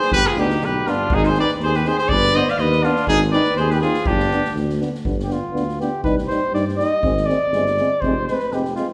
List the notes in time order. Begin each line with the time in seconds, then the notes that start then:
Already playing: G#4 C5
0.02 snare
0.11 G1 B4, kick
0.15 G4
0.25 G#4, snare
0.31 F4
0.35 D2 B3 D4, snare
0.39 D#4 G4
0.50 snare
0.61 B1 B4, snare
0.65 G4
0.86 G1 B3 D4 F4, snare
0.91 D4
1.10 G#1 G#4, kick
1.15 D#4
1.23 C5, snare
1.30 G#4, snare
1.37 C4 D#4 B4 D5
1.48 snare
1.59 D#2 C5, snare
1.65 G#4
1.74 G4 B4, snare
1.85 C4 D#4 G#4 C5, snare
1.98 G#4 C5, snare
2.09 G1 D5, kick
2.13 B4
2.23 snare
2.33 B3 D4 C5 D#5, snare
2.48 D5 F5, snare
2.58 D#2 B4 D#5, snare
2.72 snare
2.82 B3 D4 F4, snare
2.96 snare
3.07 G#1 D#4 G#4, kick
3.21 snare
3.32 C4 D#4 B4 D5, snare
3.44 snare
3.55 D#2 C5, snare
3.60 G#4
3.70 G4 B4, snare
3.81 C4 D#4 F4 G#4, snare
3.94 snare
4.05 G1 D4 G4, kick
4.19 snare
4.30 B3 D4, snare
4.45 snare
4.55 D2, snare
4.69 snare
4.80 B3 D4, snare
4.95 snare
5.04 G1 B3 D4, kick
5.19 snare
5.24 B3 G4
5.29 D4 F4, snare
5.53 D2 B3 D4, snare
5.69 snare
5.79 B3 D4 G4, snare
6.03 C2 G3 D#4 B4, kick
6.18 snare
6.27 G3 D#4 C5, snare
6.52 G2 G3 D#4 D5, snare
6.68 snare
6.77 G3 D#4 D#5, snare
7.03 G#1 G#3 C4, kick
7.17 snare
7.26 G#3 C4 D5, snare
7.52 G1 G#3 C4, snare
7.66 snare
7.77 G#3 C4, snare
8.01 F1 G#3 C5, kick
8.06 C4
8.26 G#3 C4 B4, snare
8.39 snare
8.51 F1 G#3 C4 G4, snare
8.65 snare
8.76 G#3 C4 F4, snare